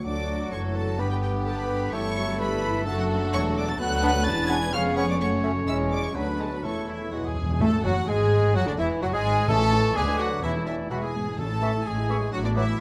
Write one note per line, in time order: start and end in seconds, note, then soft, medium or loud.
0.04 0.48 D2 medium
0.04 1.01 F#3 medium
0.04 0.49 F#3 medium
0.04 0.95 A3 medium
0.04 1.88 D4 medium
0.04 0.49 D4 medium
0.04 0.95 D4 medium
0.04 0.48 F#4 medium
0.04 1.00 F#4 medium
0.04 0.50 A4 medium
0.04 0.53 D5 medium
0.04 0.51 D6 medium
0.52 0.98 F#1 medium
0.52 0.98 F#2 medium
0.52 0.99 E3 medium
0.52 0.99 A3 medium
0.52 0.99 A4 medium
0.52 0.77 C#5 medium
0.52 0.60 C#6 medium
0.75 1.01 A4 medium
0.75 0.98 A5 medium
0.98 1.92 G1 medium
0.98 1.91 G2 medium
0.98 1.45 D3 medium
0.98 1.92 B3 medium
0.98 1.45 B3 medium
0.98 1.91 D4 medium
0.98 2.39 G4 medium
0.98 1.94 G4 medium
0.98 1.45 B4 medium
0.98 1.10 B4 medium
0.98 1.11 B5 medium
1.11 1.21 G4 medium
1.11 1.16 G5 medium
1.22 1.44 G4 medium
1.22 1.31 G5 medium
1.45 1.92 D3 medium
1.45 1.92 B3 medium
1.45 1.50 A4 medium
1.45 1.92 B4 medium
1.45 1.57 A5 medium
1.57 1.95 B4 medium
1.57 1.93 B5 medium
1.92 2.85 G1 medium
1.92 2.84 G2 medium
1.92 2.16 E3 medium
1.92 2.85 A3 medium
1.92 3.78 A3 medium
1.92 2.40 A3 medium
1.92 2.87 E4 medium
1.92 2.39 E4 medium
1.92 2.85 E4 medium
1.92 3.79 A4 medium
1.92 2.41 C#5 loud
1.92 2.39 C#6 loud
2.16 2.40 F#3 medium
2.39 2.63 G3 medium
2.39 2.87 E4 medium
2.39 2.86 B4 loud
2.39 2.86 B5 loud
2.63 2.86 E3 medium
2.86 3.33 F#1 medium
2.86 3.33 F#2 medium
2.86 3.78 F#3 medium
2.86 3.78 A3 medium
2.86 3.32 A3 medium
2.86 3.78 D4 loud
2.86 3.78 D4 medium
2.86 3.78 F#4 medium
2.86 3.79 A4 medium
2.86 2.98 A4 loud
2.86 2.98 A5 loud
2.99 3.10 F#4 medium
2.99 3.03 F#5 medium
3.33 3.80 E1 medium
3.33 3.80 E2 medium
3.33 3.79 A3 medium
3.33 3.40 C#5 loud
3.33 3.42 C#6 loud
3.57 3.68 D5 loud
3.57 3.68 D6 medium
3.69 3.80 A5 loud
3.69 3.80 A6 loud
3.79 4.26 D2 medium
3.79 4.25 F#3 medium
3.79 4.23 A3 loud
3.79 4.27 B3 medium
3.79 4.70 D4 loud
3.79 4.26 F#4 medium
3.79 4.26 A4 medium
3.79 4.75 B4 loud
3.79 4.26 F#5 loud
3.79 4.26 F#6 loud
4.03 4.11 B3 loud
4.03 4.11 D4 loud
4.26 4.74 E1 medium
4.26 4.73 E2 medium
4.26 4.74 E3 medium
4.26 5.21 B3 medium
4.26 4.74 C#4 medium
4.26 4.73 D4 medium
4.26 4.72 G#4 medium
4.26 4.52 A5 loud
4.26 4.50 A6 loud
4.49 4.58 B3 medium
4.49 4.59 D4 medium
4.49 4.75 G#5 loud
4.49 4.73 G#6 loud
4.73 5.20 F1 medium
4.73 5.20 F2 medium
4.73 5.21 G#3 medium
4.73 5.20 B3 medium
4.73 5.19 C#4 medium
4.73 6.15 C#4 loud
4.73 5.19 G#4 medium
4.73 6.17 C#5 medium
4.73 4.97 F5 loud
4.73 4.82 F6 loud
4.96 5.05 B3 medium
4.96 5.06 C#4 medium
4.96 5.02 C#5 medium
4.96 5.08 C#6 loud
5.09 5.14 D5 medium
5.09 5.14 D6 medium
5.20 5.67 F#1 medium
5.20 5.67 F#2 medium
5.20 5.67 A3 medium
5.20 5.66 A3 medium
5.20 5.65 C#4 medium
5.20 5.67 F#4 medium
5.20 5.43 C#5 medium
5.20 5.29 C#6 loud
5.43 5.52 A3 medium
5.43 5.52 C#4 medium
5.66 6.14 E1 medium
5.66 6.14 E2 medium
5.66 6.11 G#3 medium
5.66 6.14 G#3 medium
5.66 6.15 G#3 medium
5.66 6.14 C#4 medium
5.66 6.15 C#4 medium
5.66 6.17 C#4 medium
5.66 6.14 E4 medium
5.66 5.74 E5 loud
5.66 5.76 E6 loud
5.91 6.04 D5 medium
5.91 6.03 D6 medium
6.02 6.15 C#5 medium
6.02 6.16 C#6 medium
6.14 6.63 D2 medium
6.14 6.63 F#3 medium
6.14 6.64 F#3 medium
6.14 6.26 F#3 medium
6.14 6.64 B3 medium
6.14 6.63 D4 medium
6.14 6.64 D4 medium
6.14 6.66 D4 medium
6.14 6.64 F#4 medium
6.14 6.21 B4 medium
6.14 6.65 B4 medium
6.14 6.40 B5 medium
6.39 6.50 G#3 medium
6.39 6.45 A4 medium
6.39 6.52 A5 medium
6.52 6.67 B4 medium
6.52 6.65 B5 medium
6.63 7.12 E1 medium
6.63 7.12 E2 medium
6.63 6.87 E3 medium
6.63 7.11 E3 medium
6.63 7.14 A3 medium
6.63 7.13 A3 medium
6.63 6.87 C#4 medium
6.63 6.88 E4 medium
6.63 7.12 E4 medium
6.63 6.87 A4 medium
6.63 6.88 A4 medium
6.63 7.37 C#5 medium
6.63 6.89 C#6 medium
6.88 6.99 E3 medium
6.88 6.96 E4 medium
6.88 7.11 E4 medium
6.88 7.12 E5 medium
7.12 7.21 E1 medium
7.12 7.19 E2 soft
7.12 7.21 E2 medium
7.12 7.21 E3 medium
7.12 7.35 F#3 medium
7.12 7.40 G#3 medium
7.12 7.37 G#3 medium
7.12 7.40 E4 soft
7.12 7.36 E4 medium
7.12 7.26 F#4 medium
7.12 7.17 F#4 medium
7.12 7.40 B4 soft
7.12 7.25 F#5 medium
7.20 7.26 E2 soft
7.20 7.60 G#4 medium
7.25 7.34 E2 medium
7.25 7.60 G#3 medium
7.25 7.62 G#4 medium
7.25 7.62 G#5 medium
7.35 7.42 E2 medium
7.35 7.61 E3 medium
7.43 7.49 E2 medium
7.50 7.58 E2 loud
7.60 7.69 A1 medium
7.60 8.04 A2 loud
7.60 7.69 A2 loud
7.60 7.84 A3 loud
7.60 7.83 A3 loud
7.60 7.71 A3 medium
7.60 7.83 A4 loud
7.60 7.84 A4 loud
7.60 7.86 A4 medium
7.60 7.87 A5 loud
7.60 7.85 A5 medium
7.83 7.92 F#1 medium
7.83 7.92 F#2 medium
7.83 8.08 F#3 medium
7.83 7.95 F#3 medium
7.83 8.08 F#3 medium
7.83 8.07 F#4 medium
7.83 7.95 F#4 medium
7.83 8.08 F#5 loud
7.83 8.10 F#5 medium
8.07 8.54 G#1 medium
8.07 8.54 G#2 medium
8.07 8.54 G#3 medium
8.07 8.57 G#3 loud
8.07 8.54 G#4 medium
8.07 8.55 G#5 loud
8.07 8.57 G#5 loud
8.54 8.67 F#1 medium
8.54 8.67 F#2 medium
8.54 8.67 F#3 medium
8.54 8.67 F#3 loud
8.54 8.66 F#4 loud
8.54 8.68 F#4 medium
8.54 8.67 F#4 loud
8.54 8.67 F#5 loud
8.66 8.71 D2 medium
8.66 8.78 D3 medium
8.66 8.81 D3 medium
8.66 8.71 D4 medium
8.66 8.80 D4 medium
8.66 8.72 D4 medium
8.66 8.73 D5 medium
8.66 8.72 D5 medium
8.78 8.87 E1 medium
8.78 8.86 E2 medium
8.78 9.01 E3 loud
8.78 9.02 E3 medium
8.78 8.89 E4 medium
8.78 9.01 E4 medium
8.78 9.02 E4 medium
8.78 8.86 E5 loud
8.78 8.86 E5 medium
9.01 9.13 F#1 medium
9.01 9.13 F#2 medium
9.01 9.13 F#3 medium
9.01 9.14 F#3 medium
9.01 9.08 F#3 medium
9.01 9.13 F#4 medium
9.01 9.06 F#4 medium
9.01 9.15 F#4 loud
9.01 9.13 F#5 medium
9.01 9.14 F#5 medium
9.13 9.48 G#1 medium
9.13 9.47 G#2 loud
9.13 9.48 G#3 loud
9.13 9.49 G#3 loud
9.13 9.48 G#4 loud
9.13 9.47 G#5 loud
9.13 9.48 G#5 loud
9.48 9.90 A1 loud
9.48 9.92 A2 loud
9.48 9.90 A2 medium
9.48 9.97 E3 medium
9.48 9.95 A3 loud
9.48 9.60 A3 medium
9.48 9.60 C#4 medium
9.48 9.97 A4 medium
9.48 9.94 A4 loud
9.48 9.97 A4 loud
9.48 9.95 A5 loud
9.48 9.98 C#6 medium
9.60 9.72 E3 medium
9.60 9.72 E4 medium
9.71 9.83 A3 medium
9.71 9.83 C#4 medium
9.83 9.95 E3 medium
9.83 9.95 E4 medium
9.95 10.37 D2 medium
9.95 10.06 D3 medium
9.95 10.45 D3 medium
9.95 10.19 G#3 loud
9.95 10.06 B3 medium
9.95 10.21 G#4 loud
9.95 10.04 G#4 medium
9.95 10.44 B4 medium
9.95 10.18 G#5 loud
9.95 10.45 D6 medium
10.07 10.19 F#3 medium
10.07 10.19 D4 medium
10.19 10.31 D3 medium
10.19 10.43 F#3 medium
10.19 10.31 B3 medium
10.19 10.27 F#4 medium
10.19 10.42 F#4 medium
10.19 10.43 F#5 loud
10.30 10.43 F#3 medium
10.30 10.43 D4 medium
10.42 10.85 E1 medium
10.42 10.87 E2 medium
10.42 10.85 E2 medium
10.42 10.54 E3 medium
10.42 10.53 E3 medium
10.42 10.90 E3 medium
10.42 10.54 C#4 medium
10.42 10.65 E4 medium
10.42 10.66 E4 medium
10.42 10.68 C#5 medium
10.42 10.51 E5 loud
10.42 10.93 A5 medium
10.54 10.66 A3 medium
10.54 10.66 E4 medium
10.66 10.77 E3 medium
10.66 10.79 E3 medium
10.66 10.78 C#4 soft
10.66 10.75 E4 medium
10.66 10.90 E4 medium
10.66 10.90 D5 medium
10.66 10.74 E5 medium
10.79 10.90 A3 medium
10.79 10.90 E4 soft
10.90 11.32 E1 medium
10.90 10.98 B2 medium
10.90 11.14 E3 medium
10.90 10.96 F#3 medium
10.90 11.01 G#3 medium
10.90 11.02 B3 medium
10.90 11.02 F#4 medium
10.90 11.14 E5 medium
10.90 10.95 F#5 medium
10.90 11.15 B5 medium
11.02 11.14 E3 soft
11.02 11.37 G#3 medium
11.02 11.13 G#3 medium
11.02 11.38 G#4 medium
11.02 11.38 G#5 medium
11.14 11.38 G#2 medium
11.14 11.26 G#3 medium
11.14 11.26 B3 medium
11.27 11.39 E3 soft
11.27 11.38 G#3 soft
11.38 11.80 A1 medium
11.38 11.80 A2 medium
11.38 11.82 A2 medium
11.38 11.86 A3 medium
11.38 11.50 A3 medium
11.38 11.50 C#4 medium
11.38 11.86 A4 medium
11.38 11.88 A4 medium
11.38 11.85 A5 loud
11.50 11.62 E3 medium
11.50 11.62 E4 medium
11.62 11.70 E3 medium
11.62 11.74 A3 medium
11.62 11.74 C#4 medium
11.62 11.71 E5 medium
11.62 11.74 C#6 medium
11.74 11.86 E3 medium
11.74 11.86 E4 medium
11.85 12.27 A1 medium
11.85 12.27 A2 medium
11.85 12.32 G#3 medium
11.85 11.97 A3 medium
11.85 11.97 C#4 medium
11.85 12.32 G#4 medium
11.85 12.32 G#5 medium
11.97 12.09 E3 medium
11.97 12.09 E4 medium
12.09 12.17 E3 medium
12.09 12.21 A3 medium
12.09 12.21 C#4 medium
12.09 12.18 E5 medium
12.09 12.20 C#6 medium
12.21 12.32 E3 medium
12.21 12.32 E4 medium
12.32 12.74 A1 medium
12.32 12.74 A2 medium
12.32 12.44 F#3 loud
12.32 12.43 F#3 medium
12.32 12.43 D4 medium
12.32 12.44 F#4 medium
12.32 12.38 F#4 loud
12.32 12.37 F#5 loud
12.44 12.56 D3 medium
12.44 12.56 B3 medium
12.44 12.56 D4 medium
12.44 12.58 D4 medium
12.44 12.56 F#4 medium
12.44 12.49 D5 medium
12.56 12.79 E3 medium
12.56 12.68 F#3 medium
12.56 12.64 F#3 medium
12.56 12.68 D4 medium
12.56 12.80 E4 medium
12.56 12.79 E4 medium
12.56 12.65 B4 medium
12.56 12.79 E5 loud
12.56 12.67 D6 medium
12.68 12.79 B3 medium
12.68 12.79 F#4 medium